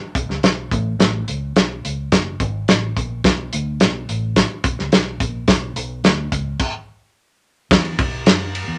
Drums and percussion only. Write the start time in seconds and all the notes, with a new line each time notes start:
0.15 kick, closed hi-hat
0.30 snare
0.43 snare, closed hi-hat
0.71 kick, closed hi-hat
1.00 snare, closed hi-hat
1.28 closed hi-hat
1.56 snare, closed hi-hat
1.85 closed hi-hat
2.12 kick, snare, closed hi-hat
2.40 kick, closed hi-hat
2.68 snare, closed hi-hat
2.97 kick, closed hi-hat
3.24 kick, snare, closed hi-hat
3.53 closed hi-hat
3.80 snare, closed hi-hat
4.09 closed hi-hat
4.36 kick, snare, closed hi-hat
4.64 kick, closed hi-hat
4.79 snare
4.92 snare, closed hi-hat
5.20 kick, closed hi-hat
5.48 kick, snare, closed hi-hat
5.76 closed hi-hat
6.04 snare, closed hi-hat
6.32 kick, closed hi-hat
6.59 kick, crash
7.71 kick, snare, ride
7.85 ride
7.99 kick, ride
8.26 snare, ride
8.55 ride